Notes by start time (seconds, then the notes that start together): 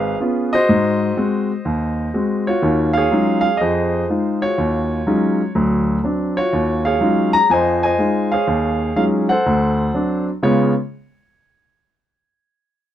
Already playing: G#1 G#4 B4 F5
0.20 B3 C#4 F4
0.53 F#4 C5 D#5
0.69 G#2
1.17 G#3 C4 F#4
1.65 D#2
2.14 G#3 C4 F#4
2.47 F4 F#4 C#5
2.62 D#2 D#3
2.93 F5
2.97 G#4 C#5
3.12 F#3 G#3 C#4 D#4 F4
3.41 F5
3.57 F2 G#4 C5 D#5
4.09 G#3 D#4 F4
4.42 F4 F#4 C#5
4.58 D#2
5.07 F#3 G#3 C#4 D#4 F4
5.55 D2 F#3
6.04 F#3 C4 D4
6.37 F4 F#4 C#5
6.53 D#2
6.85 G#4 C#5 F5
7.01 F#3 G#3 C#4 D#4 F4
7.33 A#5
7.50 F2 F3 C5 D#5 G#5
7.83 C5 D#5 G#5
7.98 G#3 D#4 F4
8.32 G#4 C#5 F5
8.47 D#2
8.96 F#3 G#3 C#4 D#4 F4 F5
9.29 A4 C5 F#5
9.46 D2
9.94 F#3 C4 D4
10.43 C#3 G#3 B3 F4 C#5